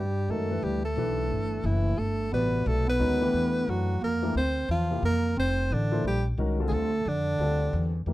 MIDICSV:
0, 0, Header, 1, 5, 480
1, 0, Start_track
1, 0, Tempo, 338028
1, 1373, Time_signature, 3, 2, 24, 8
1, 11547, End_track
2, 0, Start_track
2, 0, Title_t, "Tenor saxophone"
2, 0, Program_c, 0, 66
2, 0, Note_on_c, 0, 67, 84
2, 435, Note_on_c, 0, 69, 81
2, 457, Note_off_c, 0, 67, 0
2, 904, Note_on_c, 0, 67, 85
2, 925, Note_off_c, 0, 69, 0
2, 1194, Note_off_c, 0, 67, 0
2, 1206, Note_on_c, 0, 69, 95
2, 2352, Note_on_c, 0, 64, 86
2, 2373, Note_off_c, 0, 69, 0
2, 2823, Note_on_c, 0, 69, 98
2, 2844, Note_off_c, 0, 64, 0
2, 3300, Note_off_c, 0, 69, 0
2, 3321, Note_on_c, 0, 71, 93
2, 3801, Note_on_c, 0, 69, 96
2, 3822, Note_off_c, 0, 71, 0
2, 4085, Note_off_c, 0, 69, 0
2, 4104, Note_on_c, 0, 71, 112
2, 5251, Note_on_c, 0, 66, 93
2, 5273, Note_off_c, 0, 71, 0
2, 5715, Note_off_c, 0, 66, 0
2, 5732, Note_on_c, 0, 70, 101
2, 6163, Note_off_c, 0, 70, 0
2, 6205, Note_on_c, 0, 72, 106
2, 6639, Note_off_c, 0, 72, 0
2, 6686, Note_on_c, 0, 65, 99
2, 7119, Note_off_c, 0, 65, 0
2, 7172, Note_on_c, 0, 70, 110
2, 7602, Note_off_c, 0, 70, 0
2, 7658, Note_on_c, 0, 72, 103
2, 8138, Note_on_c, 0, 62, 91
2, 8159, Note_off_c, 0, 72, 0
2, 8597, Note_off_c, 0, 62, 0
2, 8623, Note_on_c, 0, 67, 94
2, 8876, Note_off_c, 0, 67, 0
2, 9485, Note_on_c, 0, 68, 75
2, 9566, Note_on_c, 0, 69, 108
2, 9587, Note_off_c, 0, 68, 0
2, 10057, Note_on_c, 0, 62, 98
2, 10079, Note_off_c, 0, 69, 0
2, 11290, Note_off_c, 0, 62, 0
2, 11547, End_track
3, 0, Start_track
3, 0, Title_t, "Grand piano"
3, 0, Program_c, 1, 0
3, 416, Note_on_c, 1, 51, 53
3, 419, Note_on_c, 1, 61, 49
3, 421, Note_on_c, 1, 56, 49
3, 427, Note_on_c, 1, 66, 53
3, 429, Note_on_c, 1, 70, 64
3, 680, Note_off_c, 1, 51, 0
3, 681, Note_off_c, 1, 61, 0
3, 682, Note_off_c, 1, 56, 0
3, 686, Note_off_c, 1, 66, 0
3, 686, Note_off_c, 1, 70, 0
3, 719, Note_on_c, 1, 57, 50
3, 720, Note_on_c, 1, 52, 56
3, 721, Note_on_c, 1, 62, 50
3, 724, Note_on_c, 1, 67, 48
3, 726, Note_on_c, 1, 71, 63
3, 1135, Note_off_c, 1, 52, 0
3, 1135, Note_off_c, 1, 57, 0
3, 1136, Note_off_c, 1, 62, 0
3, 1137, Note_off_c, 1, 67, 0
3, 1138, Note_off_c, 1, 71, 0
3, 1381, Note_on_c, 1, 52, 64
3, 1383, Note_on_c, 1, 62, 55
3, 1384, Note_on_c, 1, 57, 58
3, 1395, Note_on_c, 1, 67, 55
3, 1397, Note_on_c, 1, 71, 66
3, 2709, Note_off_c, 1, 52, 0
3, 2710, Note_off_c, 1, 57, 0
3, 2710, Note_off_c, 1, 62, 0
3, 2716, Note_off_c, 1, 67, 0
3, 2717, Note_off_c, 1, 71, 0
3, 3305, Note_on_c, 1, 66, 60
3, 3306, Note_on_c, 1, 55, 64
3, 3307, Note_on_c, 1, 48, 60
3, 3313, Note_on_c, 1, 71, 57
3, 3315, Note_on_c, 1, 74, 71
3, 4018, Note_off_c, 1, 66, 0
3, 4019, Note_off_c, 1, 55, 0
3, 4020, Note_off_c, 1, 48, 0
3, 4022, Note_off_c, 1, 71, 0
3, 4024, Note_off_c, 1, 74, 0
3, 4252, Note_on_c, 1, 51, 72
3, 4256, Note_on_c, 1, 56, 67
3, 4258, Note_on_c, 1, 61, 65
3, 4260, Note_on_c, 1, 66, 66
3, 4264, Note_on_c, 1, 70, 77
3, 4521, Note_off_c, 1, 51, 0
3, 4523, Note_off_c, 1, 56, 0
3, 4524, Note_off_c, 1, 61, 0
3, 4525, Note_off_c, 1, 66, 0
3, 4527, Note_off_c, 1, 70, 0
3, 4557, Note_on_c, 1, 57, 68
3, 4559, Note_on_c, 1, 52, 78
3, 4561, Note_on_c, 1, 62, 65
3, 4566, Note_on_c, 1, 67, 69
3, 4566, Note_on_c, 1, 71, 84
3, 5590, Note_off_c, 1, 57, 0
3, 5591, Note_off_c, 1, 52, 0
3, 5592, Note_off_c, 1, 62, 0
3, 5594, Note_off_c, 1, 67, 0
3, 5594, Note_off_c, 1, 71, 0
3, 5998, Note_on_c, 1, 52, 72
3, 6003, Note_on_c, 1, 57, 62
3, 6004, Note_on_c, 1, 62, 63
3, 6008, Note_on_c, 1, 67, 63
3, 6012, Note_on_c, 1, 70, 73
3, 6162, Note_off_c, 1, 52, 0
3, 6164, Note_off_c, 1, 57, 0
3, 6165, Note_off_c, 1, 62, 0
3, 6167, Note_off_c, 1, 67, 0
3, 6169, Note_off_c, 1, 70, 0
3, 6963, Note_on_c, 1, 48, 61
3, 6969, Note_on_c, 1, 53, 58
3, 6969, Note_on_c, 1, 58, 55
3, 6978, Note_on_c, 1, 64, 57
3, 6980, Note_on_c, 1, 67, 69
3, 7124, Note_off_c, 1, 48, 0
3, 7127, Note_off_c, 1, 53, 0
3, 7127, Note_off_c, 1, 58, 0
3, 7132, Note_off_c, 1, 64, 0
3, 7133, Note_off_c, 1, 67, 0
3, 8399, Note_on_c, 1, 53, 71
3, 8402, Note_on_c, 1, 58, 67
3, 8403, Note_on_c, 1, 64, 69
3, 8405, Note_on_c, 1, 69, 65
3, 8410, Note_on_c, 1, 72, 74
3, 8561, Note_off_c, 1, 53, 0
3, 8563, Note_off_c, 1, 58, 0
3, 8564, Note_off_c, 1, 64, 0
3, 8565, Note_off_c, 1, 69, 0
3, 8567, Note_off_c, 1, 72, 0
3, 9064, Note_on_c, 1, 51, 72
3, 9069, Note_on_c, 1, 56, 65
3, 9069, Note_on_c, 1, 61, 67
3, 9079, Note_on_c, 1, 66, 63
3, 9083, Note_on_c, 1, 70, 79
3, 9326, Note_off_c, 1, 51, 0
3, 9329, Note_off_c, 1, 56, 0
3, 9329, Note_off_c, 1, 61, 0
3, 9333, Note_off_c, 1, 66, 0
3, 9335, Note_off_c, 1, 70, 0
3, 9365, Note_on_c, 1, 50, 70
3, 9370, Note_on_c, 1, 55, 67
3, 9372, Note_on_c, 1, 60, 65
3, 9375, Note_on_c, 1, 69, 77
3, 9376, Note_on_c, 1, 65, 65
3, 9779, Note_off_c, 1, 50, 0
3, 9781, Note_off_c, 1, 55, 0
3, 9782, Note_off_c, 1, 60, 0
3, 9784, Note_off_c, 1, 65, 0
3, 9784, Note_off_c, 1, 69, 0
3, 10507, Note_on_c, 1, 50, 63
3, 10508, Note_on_c, 1, 55, 57
3, 10509, Note_on_c, 1, 60, 56
3, 10520, Note_on_c, 1, 65, 55
3, 10520, Note_on_c, 1, 69, 67
3, 11217, Note_off_c, 1, 50, 0
3, 11217, Note_off_c, 1, 55, 0
3, 11217, Note_off_c, 1, 60, 0
3, 11223, Note_off_c, 1, 65, 0
3, 11223, Note_off_c, 1, 69, 0
3, 11459, Note_on_c, 1, 52, 57
3, 11464, Note_on_c, 1, 57, 54
3, 11465, Note_on_c, 1, 62, 50
3, 11466, Note_on_c, 1, 67, 55
3, 11471, Note_on_c, 1, 70, 61
3, 11547, Note_off_c, 1, 52, 0
3, 11547, Note_off_c, 1, 57, 0
3, 11547, Note_off_c, 1, 62, 0
3, 11547, Note_off_c, 1, 67, 0
3, 11547, Note_off_c, 1, 70, 0
3, 11547, End_track
4, 0, Start_track
4, 0, Title_t, "Bass clarinet"
4, 0, Program_c, 2, 71
4, 0, Note_on_c, 2, 55, 79
4, 426, Note_on_c, 2, 57, 68
4, 447, Note_off_c, 2, 55, 0
4, 893, Note_on_c, 2, 55, 69
4, 915, Note_off_c, 2, 57, 0
4, 1180, Note_off_c, 2, 55, 0
4, 1189, Note_on_c, 2, 57, 79
4, 2338, Note_on_c, 2, 52, 75
4, 2359, Note_off_c, 2, 57, 0
4, 2817, Note_on_c, 2, 57, 88
4, 2839, Note_off_c, 2, 52, 0
4, 3284, Note_off_c, 2, 57, 0
4, 3293, Note_on_c, 2, 59, 82
4, 3770, Note_on_c, 2, 57, 80
4, 3791, Note_off_c, 2, 59, 0
4, 4065, Note_off_c, 2, 57, 0
4, 4074, Note_on_c, 2, 59, 90
4, 5221, Note_on_c, 2, 54, 73
4, 5243, Note_off_c, 2, 59, 0
4, 5692, Note_off_c, 2, 54, 0
4, 5700, Note_on_c, 2, 58, 88
4, 6146, Note_off_c, 2, 58, 0
4, 6195, Note_on_c, 2, 60, 90
4, 6634, Note_off_c, 2, 60, 0
4, 6666, Note_on_c, 2, 53, 75
4, 7109, Note_off_c, 2, 53, 0
4, 7150, Note_on_c, 2, 58, 95
4, 7590, Note_off_c, 2, 58, 0
4, 7633, Note_on_c, 2, 60, 89
4, 8129, Note_on_c, 2, 50, 77
4, 8151, Note_off_c, 2, 60, 0
4, 8593, Note_off_c, 2, 50, 0
4, 8608, Note_on_c, 2, 55, 79
4, 8868, Note_off_c, 2, 55, 0
4, 9477, Note_on_c, 2, 56, 66
4, 9562, Note_on_c, 2, 57, 93
4, 9583, Note_off_c, 2, 56, 0
4, 10038, Note_on_c, 2, 50, 93
4, 10060, Note_off_c, 2, 57, 0
4, 11281, Note_off_c, 2, 50, 0
4, 11547, End_track
5, 0, Start_track
5, 0, Title_t, "Upright bass"
5, 0, Program_c, 3, 32
5, 0, Note_on_c, 3, 43, 76
5, 392, Note_off_c, 3, 43, 0
5, 400, Note_on_c, 3, 42, 77
5, 872, Note_off_c, 3, 42, 0
5, 887, Note_on_c, 3, 38, 86
5, 1349, Note_off_c, 3, 38, 0
5, 1358, Note_on_c, 3, 35, 86
5, 1832, Note_off_c, 3, 35, 0
5, 1844, Note_on_c, 3, 31, 76
5, 2316, Note_off_c, 3, 31, 0
5, 2322, Note_on_c, 3, 30, 89
5, 2795, Note_off_c, 3, 30, 0
5, 2812, Note_on_c, 3, 31, 79
5, 3280, Note_off_c, 3, 31, 0
5, 3288, Note_on_c, 3, 33, 86
5, 3759, Note_off_c, 3, 33, 0
5, 3775, Note_on_c, 3, 35, 96
5, 4242, Note_off_c, 3, 35, 0
5, 4257, Note_on_c, 3, 38, 79
5, 4723, Note_off_c, 3, 38, 0
5, 4735, Note_on_c, 3, 40, 82
5, 5202, Note_off_c, 3, 40, 0
5, 5218, Note_on_c, 3, 42, 89
5, 5684, Note_off_c, 3, 42, 0
5, 5696, Note_on_c, 3, 41, 79
5, 6163, Note_off_c, 3, 41, 0
5, 6176, Note_on_c, 3, 38, 76
5, 6643, Note_off_c, 3, 38, 0
5, 6654, Note_on_c, 3, 40, 92
5, 7121, Note_off_c, 3, 40, 0
5, 7132, Note_on_c, 3, 41, 86
5, 7600, Note_off_c, 3, 41, 0
5, 7616, Note_on_c, 3, 29, 89
5, 8082, Note_off_c, 3, 29, 0
5, 8097, Note_on_c, 3, 33, 89
5, 8562, Note_off_c, 3, 33, 0
5, 8575, Note_on_c, 3, 34, 80
5, 9041, Note_off_c, 3, 34, 0
5, 9053, Note_on_c, 3, 36, 81
5, 9520, Note_off_c, 3, 36, 0
5, 9531, Note_on_c, 3, 38, 99
5, 9998, Note_off_c, 3, 38, 0
5, 10013, Note_on_c, 3, 41, 82
5, 10479, Note_off_c, 3, 41, 0
5, 10485, Note_on_c, 3, 38, 80
5, 10955, Note_off_c, 3, 38, 0
5, 10977, Note_on_c, 3, 40, 94
5, 11440, Note_off_c, 3, 40, 0
5, 11446, Note_on_c, 3, 41, 80
5, 11547, Note_off_c, 3, 41, 0
5, 11547, End_track
0, 0, End_of_file